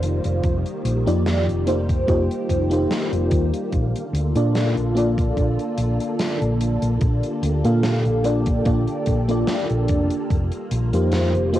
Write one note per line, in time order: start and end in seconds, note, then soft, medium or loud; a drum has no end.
0.00 0.18 F1 medium
0.00 3.69 D#3 medium
0.00 3.69 G3 medium
0.00 1.01 A#3 medium
0.00 11.60 A#3 medium
0.00 1.01 D#4 medium
0.00 0.41 F4 medium
0.00 1.02 F4 medium
0.00 1.02 G4 medium
0.00 1.02 C5 loud
0.00 closed hi-hat loud
0.24 0.41 F1 medium
0.24 closed hi-hat medium
0.44 0.62 F1 loud
0.44 3.69 G4 medium
0.44 kick loud
0.44 closed hi-hat medium
0.66 closed hi-hat soft
0.85 1.04 A#1 loud
0.85 closed hi-hat loud
1.06 1.49 F2 medium
1.06 1.62 A#3 medium
1.06 1.62 D#4 medium
1.06 1.62 F4 medium
1.06 1.63 G4 medium
1.06 1.63 D5 loud
1.06 closed hi-hat medium
1.26 snare loud
1.26 closed hi-hat medium
1.48 2.04 F1 medium
1.48 closed hi-hat soft
1.67 2.03 A#3 medium
1.67 2.03 D#4 medium
1.67 2.04 F4 medium
1.67 2.04 G4 medium
1.67 2.04 C5 loud
1.67 closed hi-hat medium
1.89 kick loud
1.89 closed hi-hat medium
2.07 2.27 F1 medium
2.07 2.66 A#3 medium
2.07 2.66 D#4 medium
2.07 2.66 F4 medium
2.07 2.66 G4 medium
2.07 2.66 C5 loud
2.07 kick loud
2.07 closed hi-hat medium
2.31 closed hi-hat soft
2.49 2.85 F1 medium
2.49 kick medium
2.49 closed hi-hat loud
2.70 3.70 A#3 medium
2.70 3.70 D#4 medium
2.70 3.70 F4 medium
2.70 3.71 G4 medium
2.70 3.71 C5 loud
2.70 closed hi-hat medium
2.91 snare loud
2.91 closed hi-hat medium
3.12 3.29 F1 medium
3.12 closed hi-hat soft
3.31 3.50 D#2 loud
3.31 kick loud
3.31 closed hi-hat loud
3.54 closed hi-hat medium
3.72 3.91 A#1 loud
3.72 10.26 D3 medium
3.72 6.98 F4 medium
3.72 10.26 A4 medium
3.72 kick loud
3.72 closed hi-hat medium
3.96 closed hi-hat medium
4.13 4.32 D2 loud
4.13 closed hi-hat loud
4.35 4.78 A#2 medium
4.35 4.91 A#3 medium
4.35 4.91 D4 medium
4.35 4.91 F4 medium
4.35 4.92 A4 medium
4.35 4.92 D5 medium
4.35 closed hi-hat medium
4.55 snare loud
4.55 closed hi-hat medium
4.76 5.32 A#1 medium
4.76 closed hi-hat soft
4.95 7.59 A#3 medium
4.95 7.59 D4 medium
4.95 7.60 F4 medium
4.95 7.60 A4 medium
4.95 7.60 D5 loud
4.95 closed hi-hat medium
5.18 kick loud
5.18 closed hi-hat medium
5.37 5.56 A#1 medium
5.37 kick loud
5.37 closed hi-hat medium
5.59 closed hi-hat soft
5.78 5.97 A#1 medium
5.78 closed hi-hat loud
6.00 closed hi-hat medium
6.19 snare loud
6.19 closed hi-hat medium
6.42 6.76 A#1 medium
6.42 closed hi-hat soft
6.61 closed hi-hat loud
6.82 6.99 A#1 medium
6.82 closed hi-hat medium
7.01 7.20 A#1 loud
7.01 10.27 G4 medium
7.01 kick loud
7.01 closed hi-hat medium
7.23 closed hi-hat soft
7.43 7.61 D2 medium
7.43 closed hi-hat loud
7.64 8.07 A#2 medium
7.64 8.20 A#3 medium
7.64 8.20 D4 medium
7.64 8.20 F4 medium
7.64 8.20 A4 medium
7.64 8.20 F5 loud
7.64 closed hi-hat medium
7.83 snare loud
7.83 closed hi-hat medium
8.05 8.61 A#1 medium
8.05 closed hi-hat soft
8.24 8.61 A#3 medium
8.24 8.61 D4 medium
8.24 8.61 F4 medium
8.24 8.61 A4 medium
8.24 8.62 D5 medium
8.24 closed hi-hat loud
8.46 kick loud
8.46 closed hi-hat medium
8.65 8.85 A#1 medium
8.65 9.23 A#3 medium
8.65 9.23 D4 medium
8.65 9.24 F4 medium
8.65 9.24 A4 medium
8.65 9.24 D5 loud
8.65 kick loud
8.65 closed hi-hat medium
8.87 closed hi-hat soft
9.06 9.42 A#1 medium
9.06 kick medium
9.06 closed hi-hat medium
9.28 10.27 A#3 medium
9.28 10.28 D4 medium
9.28 10.28 F4 medium
9.28 10.29 A4 medium
9.28 10.29 D5 loud
9.28 closed hi-hat medium
9.47 snare loud
9.47 closed hi-hat medium
9.70 9.86 A#1 medium
9.70 closed hi-hat soft
9.88 10.08 F1 loud
9.88 kick loud
9.88 closed hi-hat loud
10.10 closed hi-hat medium
10.30 10.49 F1 loud
10.30 11.60 D#3 medium
10.30 11.60 G3 medium
10.30 11.60 F4 medium
10.30 kick loud
10.30 closed hi-hat medium
10.52 closed hi-hat soft
10.71 10.90 A#1 loud
10.71 closed hi-hat loud
10.93 11.36 F2 medium
10.93 11.49 A#3 medium
10.93 11.49 D#4 medium
10.93 11.49 F4 medium
10.93 11.50 G4 medium
10.93 11.50 C5 medium
10.93 closed hi-hat medium
11.12 snare loud
11.12 closed hi-hat medium
11.34 11.60 F1 medium
11.34 closed hi-hat soft
11.53 11.60 A#3 medium
11.53 11.60 D#4 medium
11.53 11.60 F4 medium
11.53 11.60 G4 medium
11.53 11.60 C5 loud
11.53 closed hi-hat loud